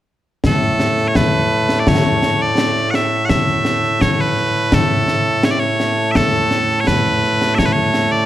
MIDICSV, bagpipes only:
0, 0, Header, 1, 2, 480
1, 0, Start_track
1, 0, Key_signature, 3, "major"
1, 0, Tempo, 714286
1, 296, Time_signature, 4, 2, 24, 8
1, 5549, End_track
2, 0, Start_track
2, 0, Title_t, "Bagpipes"
2, 0, Program_c, 0, 109
2, 311, Note_on_c, 0, 45, 89
2, 311, Note_on_c, 0, 57, 89
2, 311, Note_on_c, 0, 69, 75
2, 724, Note_off_c, 0, 69, 0
2, 724, Note_on_c, 0, 73, 67
2, 777, Note_off_c, 0, 73, 0
2, 777, Note_on_c, 0, 71, 88
2, 1206, Note_off_c, 0, 71, 0
2, 1206, Note_on_c, 0, 74, 61
2, 1263, Note_off_c, 0, 74, 0
2, 1263, Note_on_c, 0, 73, 78
2, 1624, Note_off_c, 0, 73, 0
2, 1624, Note_on_c, 0, 74, 83
2, 1952, Note_off_c, 0, 74, 0
2, 1952, Note_on_c, 0, 78, 80
2, 1982, Note_off_c, 0, 78, 0
2, 1982, Note_on_c, 0, 76, 80
2, 2184, Note_off_c, 0, 76, 0
2, 2184, Note_on_c, 0, 78, 86
2, 2213, Note_off_c, 0, 78, 0
2, 2213, Note_on_c, 0, 76, 86
2, 2698, Note_off_c, 0, 76, 0
2, 2698, Note_on_c, 0, 73, 89
2, 2770, Note_off_c, 0, 73, 0
2, 2770, Note_on_c, 0, 73, 61
2, 2825, Note_off_c, 0, 73, 0
2, 2825, Note_on_c, 0, 71, 88
2, 3187, Note_off_c, 0, 71, 0
2, 3187, Note_on_c, 0, 69, 79
2, 3659, Note_off_c, 0, 69, 0
2, 3659, Note_on_c, 0, 73, 81
2, 3700, Note_off_c, 0, 73, 0
2, 3700, Note_on_c, 0, 74, 76
2, 3760, Note_off_c, 0, 74, 0
2, 3760, Note_on_c, 0, 73, 79
2, 4109, Note_off_c, 0, 73, 0
2, 4109, Note_on_c, 0, 76, 90
2, 4139, Note_off_c, 0, 76, 0
2, 4139, Note_on_c, 0, 69, 90
2, 4571, Note_off_c, 0, 69, 0
2, 4571, Note_on_c, 0, 73, 78
2, 4616, Note_off_c, 0, 73, 0
2, 4616, Note_on_c, 0, 71, 91
2, 5073, Note_off_c, 0, 71, 0
2, 5073, Note_on_c, 0, 76, 97
2, 5097, Note_off_c, 0, 76, 0
2, 5097, Note_on_c, 0, 73, 97
2, 5143, Note_off_c, 0, 73, 0
2, 5143, Note_on_c, 0, 71, 78
2, 5190, Note_off_c, 0, 71, 0
2, 5190, Note_on_c, 0, 73, 91
2, 5453, Note_off_c, 0, 73, 0
2, 5453, Note_on_c, 0, 74, 92
2, 5549, Note_off_c, 0, 45, 0
2, 5549, Note_off_c, 0, 57, 0
2, 5549, Note_off_c, 0, 74, 0
2, 5549, End_track
0, 0, End_of_file